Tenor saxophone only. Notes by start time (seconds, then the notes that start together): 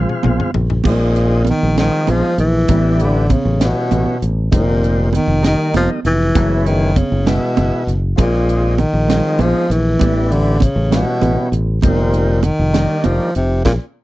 0.89 A#2
1.51 D#3
1.79 D#3
2.10 F3
2.40 E3
3.02 D3
3.32 C#3
3.64 B2
4.55 A#2
5.15 D#3
5.47 D#3
5.76 F3
6.06 E3
6.67 D#3
6.97 C#3
7.27 B2
8.20 A#2
8.79 D#3
9.41 F3
9.72 E3
10.31 D3
10.63 C#3
10.95 B2
11.84 A#2
12.44 D#3
13.05 F3
13.36 C3
13.65 A#2